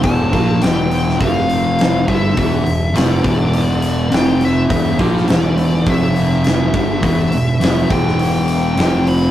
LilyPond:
<<
  \new Staff \with { instrumentName = "Lead electric guitar" } { \time 4/4 \key e \phrygian \tempo 4 = 103 a''4 g''4 f''4. e''8 | e''4 d''2 g''8 e''8~ | e''8 r8 d''4 e''2 | e''4. g''2 b''8 | }
  \new Staff \with { instrumentName = "Distorted electric guitar" } { \clef bass \time 4/4 \key e \phrygian <e, b, e>8 <ais, f ais>8 <e, b, e>4 <f, c f>4. <g, d g>8 | <e, b, e>8 <e, b,>8 <f, c f>8 <e, b, e>4. <f, c f>4 | <e, b, e>8 <ais, f ais>8 <e, b, e>4 <f, c f>4. <g, d g>8 | <e, b, e>8 <e, b,>8 <f, c f>8 <e, b, e>4. <f, c f>4 | }
  \new Staff \with { instrumentName = "Fingered electric bass" } { \clef bass \time 4/4 \key e \phrygian e,,8 ais,,8 e,,4 f,,4. g,,8 | e,,8 e,,8 f,,8 e,,4. f,,4 | e,,8 ais,,8 e,,4 f,,4. g,,8 | e,,8 e,,8 f,,8 e,,4. f,,4 | }
  \new DrumStaff \with { instrumentName = "Drums" } \drummode { \time 4/4 <hho bd>8 <hho bd>8 <hho sn>8 hho16 sn16 <hho bd>8 hho8 <hho sn>8 <hho bd>8 | <hho bd>8 hho8 <hho sn>8 <hho bd>8 hho8 hho8 <hho sn>8 hho8 | <hho bd>8 <hho bd>16 sn16 <hho sn>8 hho8 <hho bd>8 hho8 <hho sn>8 <hho bd>8 | <hho bd>8 hho8 <hho sn>8 <hho bd>16 sn16 hho8 hho8 <hho sn>8 hho8 | }
>>